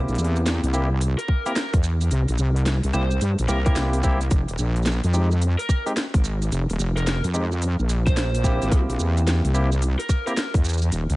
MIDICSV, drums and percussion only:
0, 0, Header, 1, 2, 480
1, 0, Start_track
1, 0, Tempo, 550459
1, 1842, Time_signature, 4, 2, 24, 8
1, 9734, End_track
2, 0, Start_track
2, 0, Title_t, "Drums"
2, 73, Note_on_c, 9, 42, 23
2, 73, Note_on_c, 9, 82, 19
2, 131, Note_off_c, 9, 42, 0
2, 131, Note_on_c, 9, 42, 31
2, 160, Note_off_c, 9, 82, 0
2, 160, Note_on_c, 9, 82, 71
2, 213, Note_off_c, 9, 42, 0
2, 213, Note_on_c, 9, 42, 43
2, 248, Note_off_c, 9, 82, 0
2, 300, Note_off_c, 9, 42, 0
2, 315, Note_on_c, 9, 42, 39
2, 315, Note_on_c, 9, 82, 31
2, 402, Note_off_c, 9, 42, 0
2, 402, Note_off_c, 9, 82, 0
2, 404, Note_on_c, 9, 38, 127
2, 404, Note_on_c, 9, 42, 85
2, 404, Note_on_c, 9, 82, 42
2, 491, Note_off_c, 9, 38, 0
2, 491, Note_off_c, 9, 42, 0
2, 491, Note_off_c, 9, 82, 0
2, 555, Note_on_c, 9, 42, 53
2, 555, Note_on_c, 9, 82, 20
2, 642, Note_off_c, 9, 82, 0
2, 642, Note_on_c, 9, 82, 69
2, 643, Note_off_c, 9, 42, 0
2, 730, Note_off_c, 9, 82, 0
2, 882, Note_on_c, 9, 42, 85
2, 882, Note_on_c, 9, 82, 40
2, 970, Note_off_c, 9, 42, 0
2, 970, Note_off_c, 9, 82, 0
2, 1035, Note_on_c, 9, 42, 54
2, 1035, Note_on_c, 9, 82, 21
2, 1119, Note_on_c, 9, 36, 67
2, 1123, Note_off_c, 9, 42, 0
2, 1123, Note_off_c, 9, 82, 0
2, 1206, Note_off_c, 9, 36, 0
2, 1273, Note_on_c, 9, 42, 39
2, 1273, Note_on_c, 9, 82, 31
2, 1361, Note_off_c, 9, 42, 0
2, 1361, Note_off_c, 9, 82, 0
2, 1361, Note_on_c, 9, 38, 127
2, 1361, Note_on_c, 9, 42, 84
2, 1361, Note_on_c, 9, 82, 42
2, 1448, Note_off_c, 9, 38, 0
2, 1448, Note_off_c, 9, 42, 0
2, 1448, Note_off_c, 9, 82, 0
2, 1512, Note_on_c, 9, 36, 117
2, 1513, Note_on_c, 9, 42, 58
2, 1513, Note_on_c, 9, 82, 22
2, 1600, Note_off_c, 9, 36, 0
2, 1600, Note_off_c, 9, 82, 0
2, 1600, Note_on_c, 9, 82, 71
2, 1601, Note_off_c, 9, 42, 0
2, 1687, Note_off_c, 9, 82, 0
2, 1753, Note_on_c, 9, 42, 39
2, 1753, Note_on_c, 9, 82, 31
2, 1840, Note_off_c, 9, 42, 0
2, 1840, Note_off_c, 9, 82, 0
2, 1840, Note_on_c, 9, 42, 80
2, 1840, Note_on_c, 9, 82, 43
2, 1927, Note_off_c, 9, 42, 0
2, 1927, Note_off_c, 9, 82, 0
2, 1992, Note_on_c, 9, 42, 50
2, 1992, Note_on_c, 9, 82, 20
2, 2077, Note_off_c, 9, 82, 0
2, 2077, Note_on_c, 9, 82, 72
2, 2079, Note_off_c, 9, 42, 0
2, 2164, Note_off_c, 9, 82, 0
2, 2234, Note_on_c, 9, 42, 36
2, 2320, Note_off_c, 9, 42, 0
2, 2320, Note_on_c, 9, 38, 127
2, 2320, Note_on_c, 9, 42, 80
2, 2320, Note_on_c, 9, 82, 43
2, 2407, Note_off_c, 9, 38, 0
2, 2407, Note_off_c, 9, 42, 0
2, 2407, Note_off_c, 9, 82, 0
2, 2472, Note_on_c, 9, 42, 52
2, 2472, Note_on_c, 9, 82, 20
2, 2560, Note_off_c, 9, 42, 0
2, 2560, Note_off_c, 9, 82, 0
2, 2560, Note_on_c, 9, 82, 68
2, 2647, Note_off_c, 9, 82, 0
2, 2713, Note_on_c, 9, 82, 30
2, 2800, Note_off_c, 9, 82, 0
2, 2800, Note_on_c, 9, 42, 83
2, 2800, Note_on_c, 9, 82, 42
2, 2887, Note_off_c, 9, 42, 0
2, 2887, Note_off_c, 9, 82, 0
2, 2953, Note_on_c, 9, 42, 53
2, 2953, Note_on_c, 9, 82, 21
2, 3040, Note_off_c, 9, 42, 0
2, 3040, Note_off_c, 9, 82, 0
2, 3040, Note_on_c, 9, 37, 51
2, 3040, Note_on_c, 9, 82, 76
2, 3077, Note_off_c, 9, 37, 0
2, 3077, Note_on_c, 9, 37, 42
2, 3114, Note_off_c, 9, 37, 0
2, 3114, Note_on_c, 9, 37, 33
2, 3127, Note_off_c, 9, 82, 0
2, 3153, Note_off_c, 9, 37, 0
2, 3153, Note_on_c, 9, 37, 28
2, 3190, Note_on_c, 9, 42, 37
2, 3190, Note_on_c, 9, 82, 32
2, 3192, Note_on_c, 9, 36, 111
2, 3241, Note_off_c, 9, 37, 0
2, 3277, Note_off_c, 9, 42, 0
2, 3277, Note_off_c, 9, 82, 0
2, 3278, Note_on_c, 9, 38, 122
2, 3278, Note_on_c, 9, 42, 78
2, 3278, Note_on_c, 9, 82, 42
2, 3280, Note_off_c, 9, 36, 0
2, 3365, Note_off_c, 9, 38, 0
2, 3365, Note_off_c, 9, 42, 0
2, 3365, Note_off_c, 9, 82, 0
2, 3429, Note_on_c, 9, 42, 55
2, 3429, Note_on_c, 9, 82, 22
2, 3517, Note_off_c, 9, 42, 0
2, 3517, Note_off_c, 9, 82, 0
2, 3517, Note_on_c, 9, 82, 71
2, 3519, Note_on_c, 9, 36, 65
2, 3604, Note_off_c, 9, 82, 0
2, 3606, Note_off_c, 9, 36, 0
2, 3670, Note_on_c, 9, 42, 36
2, 3670, Note_on_c, 9, 82, 31
2, 3757, Note_off_c, 9, 42, 0
2, 3757, Note_off_c, 9, 82, 0
2, 3757, Note_on_c, 9, 42, 81
2, 3757, Note_on_c, 9, 82, 46
2, 3759, Note_on_c, 9, 36, 122
2, 3844, Note_off_c, 9, 42, 0
2, 3844, Note_off_c, 9, 82, 0
2, 3846, Note_off_c, 9, 36, 0
2, 3911, Note_on_c, 9, 42, 48
2, 3911, Note_on_c, 9, 82, 21
2, 3997, Note_off_c, 9, 82, 0
2, 3997, Note_on_c, 9, 82, 76
2, 3998, Note_off_c, 9, 42, 0
2, 4084, Note_off_c, 9, 82, 0
2, 4150, Note_on_c, 9, 42, 35
2, 4150, Note_on_c, 9, 82, 14
2, 4208, Note_off_c, 9, 82, 0
2, 4208, Note_on_c, 9, 82, 20
2, 4236, Note_off_c, 9, 42, 0
2, 4236, Note_off_c, 9, 82, 0
2, 4236, Note_on_c, 9, 38, 124
2, 4236, Note_on_c, 9, 42, 80
2, 4236, Note_on_c, 9, 82, 45
2, 4289, Note_off_c, 9, 82, 0
2, 4289, Note_on_c, 9, 82, 26
2, 4323, Note_off_c, 9, 38, 0
2, 4323, Note_off_c, 9, 42, 0
2, 4376, Note_off_c, 9, 82, 0
2, 4392, Note_on_c, 9, 42, 51
2, 4392, Note_on_c, 9, 82, 22
2, 4479, Note_off_c, 9, 42, 0
2, 4479, Note_off_c, 9, 82, 0
2, 4480, Note_on_c, 9, 82, 73
2, 4567, Note_off_c, 9, 82, 0
2, 4633, Note_on_c, 9, 82, 32
2, 4720, Note_off_c, 9, 82, 0
2, 4723, Note_on_c, 9, 42, 76
2, 4723, Note_on_c, 9, 82, 43
2, 4810, Note_off_c, 9, 42, 0
2, 4810, Note_off_c, 9, 82, 0
2, 4877, Note_on_c, 9, 42, 53
2, 4877, Note_on_c, 9, 82, 22
2, 4961, Note_on_c, 9, 36, 63
2, 4964, Note_off_c, 9, 42, 0
2, 4964, Note_off_c, 9, 82, 0
2, 4965, Note_on_c, 9, 37, 54
2, 4965, Note_on_c, 9, 82, 77
2, 5048, Note_off_c, 9, 36, 0
2, 5052, Note_off_c, 9, 37, 0
2, 5052, Note_off_c, 9, 82, 0
2, 5116, Note_on_c, 9, 42, 36
2, 5116, Note_on_c, 9, 82, 33
2, 5203, Note_off_c, 9, 42, 0
2, 5203, Note_off_c, 9, 82, 0
2, 5203, Note_on_c, 9, 38, 122
2, 5203, Note_on_c, 9, 42, 76
2, 5203, Note_on_c, 9, 82, 44
2, 5290, Note_off_c, 9, 38, 0
2, 5290, Note_off_c, 9, 42, 0
2, 5290, Note_off_c, 9, 82, 0
2, 5354, Note_on_c, 9, 36, 108
2, 5357, Note_on_c, 9, 42, 54
2, 5357, Note_on_c, 9, 82, 23
2, 5442, Note_off_c, 9, 36, 0
2, 5444, Note_off_c, 9, 42, 0
2, 5444, Note_off_c, 9, 82, 0
2, 5445, Note_on_c, 9, 82, 76
2, 5532, Note_off_c, 9, 82, 0
2, 5598, Note_on_c, 9, 42, 36
2, 5598, Note_on_c, 9, 82, 33
2, 5685, Note_off_c, 9, 42, 0
2, 5685, Note_off_c, 9, 82, 0
2, 5687, Note_on_c, 9, 42, 80
2, 5687, Note_on_c, 9, 82, 47
2, 5774, Note_off_c, 9, 42, 0
2, 5774, Note_off_c, 9, 82, 0
2, 5840, Note_on_c, 9, 42, 49
2, 5840, Note_on_c, 9, 82, 21
2, 5926, Note_off_c, 9, 82, 0
2, 5926, Note_on_c, 9, 82, 80
2, 5928, Note_off_c, 9, 42, 0
2, 6014, Note_off_c, 9, 82, 0
2, 6078, Note_on_c, 9, 42, 36
2, 6078, Note_on_c, 9, 82, 32
2, 6165, Note_off_c, 9, 42, 0
2, 6165, Note_off_c, 9, 82, 0
2, 6165, Note_on_c, 9, 38, 122
2, 6165, Note_on_c, 9, 42, 78
2, 6165, Note_on_c, 9, 82, 45
2, 6252, Note_off_c, 9, 38, 0
2, 6252, Note_off_c, 9, 42, 0
2, 6252, Note_off_c, 9, 82, 0
2, 6315, Note_on_c, 9, 42, 51
2, 6315, Note_on_c, 9, 82, 22
2, 6403, Note_off_c, 9, 42, 0
2, 6403, Note_off_c, 9, 82, 0
2, 6403, Note_on_c, 9, 82, 74
2, 6490, Note_off_c, 9, 82, 0
2, 6556, Note_on_c, 9, 82, 33
2, 6643, Note_off_c, 9, 82, 0
2, 6644, Note_on_c, 9, 42, 79
2, 6644, Note_on_c, 9, 82, 44
2, 6731, Note_off_c, 9, 42, 0
2, 6731, Note_off_c, 9, 82, 0
2, 6796, Note_on_c, 9, 82, 23
2, 6883, Note_off_c, 9, 82, 0
2, 6883, Note_on_c, 9, 42, 53
2, 6883, Note_on_c, 9, 82, 81
2, 6970, Note_off_c, 9, 42, 0
2, 6970, Note_off_c, 9, 82, 0
2, 7033, Note_on_c, 9, 36, 105
2, 7037, Note_on_c, 9, 42, 37
2, 7037, Note_on_c, 9, 82, 35
2, 7120, Note_off_c, 9, 36, 0
2, 7124, Note_off_c, 9, 42, 0
2, 7124, Note_off_c, 9, 82, 0
2, 7124, Note_on_c, 9, 38, 118
2, 7124, Note_on_c, 9, 42, 76
2, 7124, Note_on_c, 9, 82, 44
2, 7211, Note_off_c, 9, 38, 0
2, 7211, Note_off_c, 9, 42, 0
2, 7211, Note_off_c, 9, 82, 0
2, 7278, Note_on_c, 9, 42, 54
2, 7278, Note_on_c, 9, 82, 23
2, 7359, Note_on_c, 9, 36, 62
2, 7364, Note_off_c, 9, 82, 0
2, 7364, Note_on_c, 9, 82, 77
2, 7366, Note_off_c, 9, 42, 0
2, 7447, Note_off_c, 9, 36, 0
2, 7451, Note_off_c, 9, 82, 0
2, 7516, Note_on_c, 9, 42, 36
2, 7516, Note_on_c, 9, 82, 34
2, 7600, Note_on_c, 9, 36, 120
2, 7603, Note_off_c, 9, 42, 0
2, 7603, Note_off_c, 9, 82, 0
2, 7604, Note_on_c, 9, 42, 80
2, 7604, Note_on_c, 9, 82, 48
2, 7687, Note_off_c, 9, 36, 0
2, 7692, Note_off_c, 9, 42, 0
2, 7692, Note_off_c, 9, 82, 0
2, 7758, Note_on_c, 9, 42, 49
2, 7758, Note_on_c, 9, 82, 21
2, 7844, Note_off_c, 9, 82, 0
2, 7844, Note_on_c, 9, 82, 79
2, 7845, Note_off_c, 9, 42, 0
2, 7931, Note_off_c, 9, 82, 0
2, 7998, Note_on_c, 9, 42, 37
2, 7998, Note_on_c, 9, 82, 34
2, 8085, Note_off_c, 9, 42, 0
2, 8085, Note_off_c, 9, 82, 0
2, 8086, Note_on_c, 9, 38, 122
2, 8086, Note_on_c, 9, 42, 84
2, 8086, Note_on_c, 9, 82, 46
2, 8173, Note_off_c, 9, 38, 0
2, 8173, Note_off_c, 9, 42, 0
2, 8173, Note_off_c, 9, 82, 0
2, 8239, Note_on_c, 9, 42, 54
2, 8239, Note_on_c, 9, 82, 22
2, 8325, Note_off_c, 9, 82, 0
2, 8325, Note_on_c, 9, 82, 78
2, 8326, Note_off_c, 9, 42, 0
2, 8412, Note_off_c, 9, 82, 0
2, 8478, Note_on_c, 9, 82, 34
2, 8564, Note_off_c, 9, 82, 0
2, 8564, Note_on_c, 9, 42, 81
2, 8564, Note_on_c, 9, 82, 44
2, 8651, Note_off_c, 9, 42, 0
2, 8651, Note_off_c, 9, 82, 0
2, 8717, Note_on_c, 9, 42, 53
2, 8717, Note_on_c, 9, 82, 23
2, 8800, Note_on_c, 9, 36, 60
2, 8803, Note_off_c, 9, 82, 0
2, 8803, Note_on_c, 9, 37, 58
2, 8803, Note_on_c, 9, 82, 82
2, 8804, Note_off_c, 9, 42, 0
2, 8887, Note_off_c, 9, 36, 0
2, 8890, Note_off_c, 9, 37, 0
2, 8890, Note_off_c, 9, 82, 0
2, 8957, Note_on_c, 9, 42, 38
2, 8957, Note_on_c, 9, 82, 34
2, 9044, Note_off_c, 9, 42, 0
2, 9044, Note_off_c, 9, 82, 0
2, 9044, Note_on_c, 9, 38, 117
2, 9044, Note_on_c, 9, 42, 82
2, 9044, Note_on_c, 9, 82, 45
2, 9131, Note_off_c, 9, 38, 0
2, 9131, Note_off_c, 9, 42, 0
2, 9131, Note_off_c, 9, 82, 0
2, 9192, Note_on_c, 9, 36, 104
2, 9200, Note_on_c, 9, 42, 56
2, 9200, Note_on_c, 9, 82, 23
2, 9279, Note_off_c, 9, 36, 0
2, 9284, Note_off_c, 9, 82, 0
2, 9284, Note_on_c, 9, 82, 75
2, 9287, Note_off_c, 9, 42, 0
2, 9321, Note_off_c, 9, 82, 0
2, 9321, Note_on_c, 9, 82, 62
2, 9359, Note_off_c, 9, 82, 0
2, 9359, Note_on_c, 9, 82, 51
2, 9397, Note_off_c, 9, 82, 0
2, 9397, Note_on_c, 9, 82, 42
2, 9433, Note_off_c, 9, 82, 0
2, 9433, Note_on_c, 9, 42, 36
2, 9433, Note_on_c, 9, 82, 34
2, 9521, Note_off_c, 9, 42, 0
2, 9521, Note_off_c, 9, 82, 0
2, 9523, Note_on_c, 9, 42, 88
2, 9523, Note_on_c, 9, 82, 47
2, 9610, Note_off_c, 9, 42, 0
2, 9610, Note_off_c, 9, 82, 0
2, 9677, Note_on_c, 9, 42, 52
2, 9677, Note_on_c, 9, 82, 20
2, 9734, Note_off_c, 9, 42, 0
2, 9734, Note_off_c, 9, 82, 0
2, 9734, End_track
0, 0, End_of_file